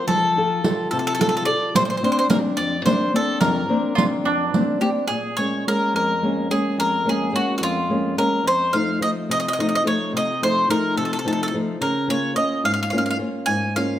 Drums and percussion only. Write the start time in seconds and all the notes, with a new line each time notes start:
0.09 riq
0.64 riq
0.92 riq
1.21 riq
1.75 riq
2.30 riq
2.59 riq
2.87 riq
3.41 riq
3.98 riq
4.54 riq